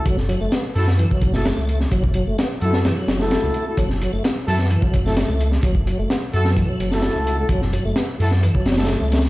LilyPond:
<<
  \new Staff \with { instrumentName = "Brass ensemble" } { \time 4/4 \key fis \minor \tempo 4 = 129 r4. <e' fis' a'>16 r4 <e' fis' a'>16 r4 | r4. <e' fis' a'>16 r4 <e' fis' a'>4 <e' fis' a'>16 | r4. <e' fis' a'>16 r4 <e' fis' a'>16 r4 | r4. <e' fis' a'>16 r4 <e' fis' a'>4 <e' fis' a'>16 |
r4. <e' fis' a'>16 r4 <e' fis' a'>16 r4 | }
  \new Staff \with { instrumentName = "Tonewheel organ" } { \clef bass \time 4/4 \key fis \minor fis16 r16 fis16 a16 b16 r8 b16 e16 fis8 a4 r16 | fis16 r16 fis16 a16 b16 r8 b16 e16 fis8 a4 r16 | fis16 r16 fis16 a16 b16 r8 b16 e16 fis8 a4 r16 | fis16 r16 fis16 a16 b16 r8 b16 e16 fis8 a4 r16 |
fis16 r16 fis16 a16 b16 r8 b16 e16 fis8 a4 r16 | }
  \new Staff \with { instrumentName = "Detuned saw bass" } { \clef bass \time 4/4 \key fis \minor fis,,8. fis,,16 r8 fis,8. r16 fis,,8. cis,8. | fis,,8. fis,,16 r8 fis,8. r16 fis,,8. cis,16 r8 | fis,,8. fis,,16 r8 fis,8. r16 fis,,8. cis,8. | fis,,8. fis,,16 r8 fis,8. r16 fis,,8. cis,8. |
fis,,8. fis,,16 r8 fis,8. r16 fis,,8. cis,8. | }
  \new DrumStaff \with { instrumentName = "Drums" } \drummode { \time 4/4 <hh bd>16 sn16 hh8 <hh sn>8 hho16 sn16 hh16 bd16 <hh bd>16 sn16 <hh sn>8 hh16 sn16 | <hh bd>16 bd16 hh8 <hh sn>8 hh16 sn16 <hh sn>8 <hh sn>16 sn16 <hh sn>8 hh8 | <hh bd>16 sn16 hh8 <hh sn>8 hho16 sn16 hh16 bd16 <hh bd>16 sn16 <hh sn>8 hh16 sn16 | <hh bd>16 bd16 hh8 <hh sn>8 hh16 sn16 <hh bd>8 hh16 sn16 <hh sn>8 hh8 |
<hh bd>16 sn16 hh8 <hh sn>8 hho16 sn16 hh16 bd16 <hh sn>32 <hh sn>32 <hh sn>32 <hh sn>32 <hh sn>8 <hh sn>32 <hh sn>32 <hh sn>16 | }
>>